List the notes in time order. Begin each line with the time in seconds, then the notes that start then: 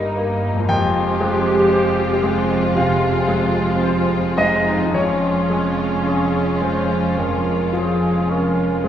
Already playing: G1 G2 G3 A#3 D#4 A#4 D#5 A#5
0.18 A#3
0.51 F2
0.56 G#3
0.60 F4
0.64 F1 F2 C5
0.69 F2 G#3 C4 F4 G4 G5
1.20 G#3
1.72 C5
2.23 G#3
2.75 C3 F4 F5
3.28 G#3
3.83 C5
4.37 G#3 D#4 D#5
4.77 F2
4.81 G#3
4.85 F4
4.90 C#4
4.94 F1 F2 G#3 C#4 F4 C#5
5.50 G#3
6.05 C#4 G#4
6.61 G#3 C5
7.17 F2 A#4
7.73 F3 G#4
8.29 C#4 A#4
8.84 G#3 C5